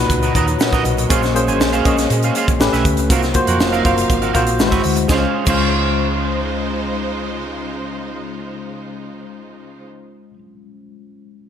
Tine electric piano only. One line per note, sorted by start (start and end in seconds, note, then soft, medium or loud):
0.00 1.12 A#2 loud
0.00 1.12 D#4 medium
0.00 0.85 F#4 medium
0.00 1.12 B4 loud
0.35 0.59 C#5 medium
0.35 0.59 A#5 medium
0.60 0.84 A#4 medium
0.60 0.84 F#5 medium
0.85 1.33 F#4 medium
0.85 1.33 D#5 medium
1.09 1.25 A#3 medium
1.09 1.25 C#4 medium
1.09 1.26 G#4 medium
1.09 1.26 C5 medium
1.35 1.66 A#3 medium
1.35 1.67 C#4 medium
1.35 1.67 G#4 medium
1.35 1.67 C5 loud
1.85 2.48 A#3 medium
1.85 2.48 C#4 medium
1.85 2.48 G#4 medium
1.85 2.49 D#5 medium
2.60 3.00 A3 loud
2.60 3.00 C#4 medium
2.60 3.00 G4 medium
2.60 3.01 B4 loud
3.10 3.26 A#3 medium
3.10 3.26 F4 medium
3.10 3.26 F#4 medium
3.10 3.26 C5 medium
3.34 3.66 A#3 medium
3.34 3.67 F4 medium
3.34 3.67 F#4 medium
3.34 3.67 C5 loud
3.85 4.16 A#3 medium
3.85 4.17 F4 medium
3.85 4.17 F#4 medium
3.85 4.17 C5 medium
4.34 4.60 A#3 medium
4.34 4.60 F4 medium
4.34 4.59 F#4 medium
4.34 4.60 C5 loud
4.60 5.00 G#3 medium
4.60 5.00 E4 medium
4.60 5.00 F#4 medium
4.60 4.66 B4 medium
4.67 5.04 C5 loud
5.07 5.23 G#3 medium
5.07 5.24 C#4 medium
5.07 5.25 F4 medium
5.12 5.25 C5 medium
5.45 10.29 G#3 medium
5.45 10.31 C#4 medium
5.45 10.32 F4 medium
5.50 10.34 C5 medium